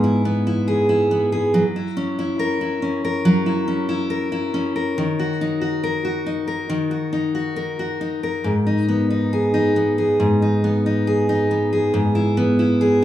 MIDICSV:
0, 0, Header, 1, 2, 480
1, 0, Start_track
1, 0, Key_signature, 5, "minor"
1, 0, Tempo, 859599
1, 863, Time_signature, 4, 2, 24, 8
1, 3743, Tempo, 869565
1, 7244, End_track
2, 0, Start_track
2, 0, Title_t, "Steel-string acoustic guitar"
2, 0, Program_c, 0, 25
2, 0, Note_on_c, 0, 44, 67
2, 0, Note_on_c, 0, 59, 48
2, 0, Note_on_c, 0, 68, 52
2, 20, Note_on_c, 0, 64, 43
2, 134, Note_off_c, 0, 59, 0
2, 141, Note_on_c, 0, 59, 49
2, 258, Note_off_c, 0, 64, 0
2, 261, Note_on_c, 0, 64, 47
2, 371, Note_off_c, 0, 68, 0
2, 377, Note_on_c, 0, 68, 54
2, 495, Note_off_c, 0, 64, 0
2, 497, Note_on_c, 0, 64, 46
2, 613, Note_off_c, 0, 59, 0
2, 620, Note_on_c, 0, 59, 48
2, 732, Note_off_c, 0, 68, 0
2, 739, Note_on_c, 0, 68, 52
2, 860, Note_on_c, 0, 54, 65
2, 909, Note_off_c, 0, 44, 0
2, 909, Note_off_c, 0, 59, 0
2, 909, Note_off_c, 0, 68, 0
2, 980, Note_off_c, 0, 64, 0
2, 982, Note_on_c, 0, 64, 45
2, 1098, Note_on_c, 0, 61, 50
2, 1214, Note_off_c, 0, 64, 0
2, 1221, Note_on_c, 0, 64, 49
2, 1337, Note_on_c, 0, 70, 57
2, 1451, Note_off_c, 0, 64, 0
2, 1457, Note_on_c, 0, 64, 47
2, 1569, Note_off_c, 0, 61, 0
2, 1576, Note_on_c, 0, 61, 47
2, 1698, Note_off_c, 0, 70, 0
2, 1700, Note_on_c, 0, 70, 55
2, 1813, Note_off_c, 0, 54, 0
2, 1815, Note_on_c, 0, 54, 71
2, 1926, Note_off_c, 0, 64, 0
2, 1933, Note_on_c, 0, 64, 44
2, 2046, Note_off_c, 0, 61, 0
2, 2053, Note_on_c, 0, 61, 49
2, 2164, Note_off_c, 0, 64, 0
2, 2171, Note_on_c, 0, 64, 51
2, 2287, Note_off_c, 0, 70, 0
2, 2290, Note_on_c, 0, 70, 54
2, 2405, Note_off_c, 0, 64, 0
2, 2412, Note_on_c, 0, 64, 50
2, 2528, Note_off_c, 0, 61, 0
2, 2535, Note_on_c, 0, 61, 50
2, 2654, Note_off_c, 0, 70, 0
2, 2656, Note_on_c, 0, 70, 48
2, 2780, Note_on_c, 0, 51, 63
2, 2825, Note_off_c, 0, 64, 0
2, 2826, Note_off_c, 0, 61, 0
2, 2901, Note_on_c, 0, 66, 47
2, 3022, Note_on_c, 0, 63, 53
2, 3133, Note_off_c, 0, 66, 0
2, 3135, Note_on_c, 0, 66, 46
2, 3256, Note_off_c, 0, 70, 0
2, 3258, Note_on_c, 0, 70, 55
2, 3374, Note_off_c, 0, 66, 0
2, 3376, Note_on_c, 0, 66, 47
2, 3496, Note_off_c, 0, 63, 0
2, 3498, Note_on_c, 0, 63, 45
2, 3609, Note_off_c, 0, 70, 0
2, 3616, Note_on_c, 0, 70, 52
2, 3736, Note_off_c, 0, 51, 0
2, 3739, Note_on_c, 0, 51, 66
2, 3769, Note_off_c, 0, 54, 0
2, 3855, Note_off_c, 0, 66, 0
2, 3857, Note_on_c, 0, 66, 45
2, 3974, Note_off_c, 0, 63, 0
2, 3977, Note_on_c, 0, 63, 48
2, 4096, Note_off_c, 0, 66, 0
2, 4099, Note_on_c, 0, 66, 47
2, 4211, Note_off_c, 0, 70, 0
2, 4218, Note_on_c, 0, 70, 54
2, 4342, Note_off_c, 0, 66, 0
2, 4344, Note_on_c, 0, 66, 46
2, 4462, Note_off_c, 0, 63, 0
2, 4464, Note_on_c, 0, 63, 47
2, 4581, Note_off_c, 0, 70, 0
2, 4588, Note_on_c, 0, 70, 49
2, 4703, Note_on_c, 0, 44, 62
2, 4758, Note_off_c, 0, 70, 0
2, 4824, Note_off_c, 0, 66, 0
2, 4826, Note_off_c, 0, 63, 0
2, 4826, Note_on_c, 0, 63, 46
2, 4948, Note_on_c, 0, 59, 47
2, 5062, Note_off_c, 0, 63, 0
2, 5069, Note_on_c, 0, 63, 44
2, 5192, Note_on_c, 0, 68, 56
2, 5301, Note_off_c, 0, 63, 0
2, 5308, Note_on_c, 0, 63, 48
2, 5429, Note_off_c, 0, 59, 0
2, 5431, Note_on_c, 0, 59, 46
2, 5550, Note_off_c, 0, 68, 0
2, 5552, Note_on_c, 0, 68, 50
2, 5665, Note_off_c, 0, 44, 0
2, 5671, Note_off_c, 0, 51, 0
2, 5672, Note_on_c, 0, 44, 68
2, 5789, Note_off_c, 0, 63, 0
2, 5796, Note_on_c, 0, 63, 44
2, 5914, Note_off_c, 0, 59, 0
2, 5916, Note_on_c, 0, 59, 49
2, 6031, Note_off_c, 0, 63, 0
2, 6037, Note_on_c, 0, 63, 48
2, 6153, Note_off_c, 0, 68, 0
2, 6155, Note_on_c, 0, 68, 53
2, 6269, Note_off_c, 0, 63, 0
2, 6275, Note_on_c, 0, 63, 50
2, 6393, Note_off_c, 0, 59, 0
2, 6396, Note_on_c, 0, 59, 46
2, 6514, Note_off_c, 0, 68, 0
2, 6516, Note_on_c, 0, 68, 52
2, 6625, Note_off_c, 0, 44, 0
2, 6632, Note_on_c, 0, 44, 65
2, 6679, Note_off_c, 0, 63, 0
2, 6750, Note_on_c, 0, 64, 49
2, 6870, Note_off_c, 0, 59, 0
2, 6872, Note_on_c, 0, 59, 53
2, 6991, Note_off_c, 0, 64, 0
2, 6993, Note_on_c, 0, 64, 48
2, 7111, Note_off_c, 0, 68, 0
2, 7113, Note_on_c, 0, 68, 58
2, 7230, Note_off_c, 0, 64, 0
2, 7244, Note_off_c, 0, 44, 0
2, 7244, Note_off_c, 0, 59, 0
2, 7244, Note_off_c, 0, 68, 0
2, 7244, End_track
0, 0, End_of_file